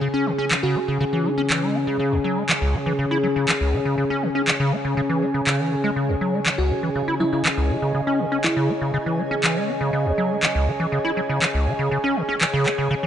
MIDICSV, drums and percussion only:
0, 0, Header, 1, 2, 480
1, 0, Start_track
1, 0, Key_signature, 4, "minor"
1, 0, Tempo, 495868
1, 12, Time_signature, 4, 2, 24, 8
1, 12650, End_track
2, 0, Start_track
2, 0, Title_t, "Drums"
2, 494, Note_on_c, 9, 39, 111
2, 591, Note_off_c, 9, 39, 0
2, 1454, Note_on_c, 9, 39, 113
2, 1551, Note_off_c, 9, 39, 0
2, 2414, Note_on_c, 9, 39, 108
2, 2511, Note_off_c, 9, 39, 0
2, 3374, Note_on_c, 9, 39, 113
2, 3471, Note_off_c, 9, 39, 0
2, 4334, Note_on_c, 9, 39, 106
2, 4431, Note_off_c, 9, 39, 0
2, 5295, Note_on_c, 9, 39, 106
2, 5391, Note_off_c, 9, 39, 0
2, 6255, Note_on_c, 9, 39, 103
2, 6352, Note_off_c, 9, 39, 0
2, 7215, Note_on_c, 9, 39, 100
2, 7311, Note_off_c, 9, 39, 0
2, 8174, Note_on_c, 9, 39, 104
2, 8271, Note_off_c, 9, 39, 0
2, 9135, Note_on_c, 9, 39, 104
2, 9232, Note_off_c, 9, 39, 0
2, 10095, Note_on_c, 9, 39, 102
2, 10192, Note_off_c, 9, 39, 0
2, 11055, Note_on_c, 9, 39, 103
2, 11152, Note_off_c, 9, 39, 0
2, 12015, Note_on_c, 9, 39, 113
2, 12111, Note_off_c, 9, 39, 0
2, 12255, Note_on_c, 9, 39, 59
2, 12351, Note_off_c, 9, 39, 0
2, 12650, End_track
0, 0, End_of_file